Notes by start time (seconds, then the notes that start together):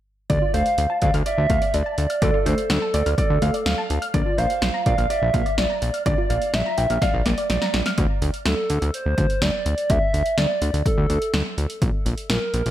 0.30 D2 D3 D5, kick, closed hi-hat
0.42 F4
0.54 D2 A3 C5 F5, closed hi-hat
0.66 closed hi-hat
0.78 D2, closed hi-hat
0.90 A5
1.02 D2 D5 F5, kick, closed hi-hat
1.14 D2 F6, closed hi-hat
1.26 D5 E5, closed hi-hat
1.38 D2
1.50 D2 A3 F5, kick, closed hi-hat
1.62 D5, closed hi-hat
1.74 D2 D5, closed hi-hat
1.86 A5
1.98 D2, closed hi-hat
2.10 F6, closed hi-hat
2.22 D2 D3 A4 D5, kick, closed hi-hat
2.34 F4
2.46 D2 A3 C5, closed hi-hat
2.58 closed hi-hat
2.70 D2 A4, snare, closed hi-hat
2.82 A5
2.94 D2 D5, closed hi-hat
3.06 D2 F6, closed hi-hat
3.18 A4 D5, kick, closed hi-hat
3.30 D2
3.42 D2 A3 F5, closed hi-hat
3.54 D5, closed hi-hat
3.66 D2 F5, snare, closed hi-hat
3.78 A5
3.90 D2, closed hi-hat
4.02 F6, closed hi-hat
4.14 A#1 D3 D5, kick, closed hi-hat
4.26 F4
4.38 A#1 A#3 C5 F5, closed hi-hat
4.50 closed hi-hat
4.62 A#1, snare, closed hi-hat
4.74 A#5
4.86 A#1 D5 F5, kick, closed hi-hat
4.98 A#1 F6, closed hi-hat
5.10 D5 E5, closed hi-hat
5.22 A#1
5.34 A#1 A#3 F5, kick, closed hi-hat
5.46 D5, closed hi-hat
5.58 A#1 D5, snare, closed hi-hat
5.70 A#5
5.82 A#1, closed hi-hat
5.94 F6, closed hi-hat
6.06 A#1 D3 D5, kick, closed hi-hat
6.18 F4
6.30 A#1 A#3 F5, closed hi-hat
6.42 closed hi-hat
6.54 A#1 E5, snare, closed hi-hat
6.66 A#5
6.78 A#1 G5, closed hi-hat
6.90 A#1 F6, closed hi-hat
7.02 D5 F5, kick, snare, closed hi-hat
7.14 A#1
7.26 A#1 A#3 D5, snare, closed hi-hat
7.38 D5, closed hi-hat
7.50 A#1 D5, snare, closed hi-hat
7.62 A#5, snare
7.74 A#1, snare, closed hi-hat
7.86 F6, snare, closed hi-hat
7.98 D2, kick, closed hi-hat
8.22 D2, closed hi-hat
8.34 closed hi-hat
8.46 D2 A4, snare, closed hi-hat
8.70 D2, closed hi-hat
8.82 D2, closed hi-hat
8.94 C5, closed hi-hat
9.06 D2
9.18 D2, kick, closed hi-hat
9.30 closed hi-hat
9.42 D2 D5, snare, closed hi-hat
9.66 D2, closed hi-hat
9.78 closed hi-hat
9.90 D2 E5, kick, closed hi-hat
10.14 D2, closed hi-hat
10.26 closed hi-hat
10.38 D2 D5, snare, closed hi-hat
10.62 D2, closed hi-hat
10.74 D2, closed hi-hat
10.86 A4, kick, closed hi-hat
10.98 D2
11.10 D2, closed hi-hat
11.22 closed hi-hat
11.34 D2, snare, closed hi-hat
11.58 D2, closed hi-hat
11.70 closed hi-hat
11.82 A#1, kick, closed hi-hat
12.06 A#1, closed hi-hat
12.18 closed hi-hat
12.30 A#1 A#4, snare, closed hi-hat
12.54 A#1, closed hi-hat
12.66 A#1, closed hi-hat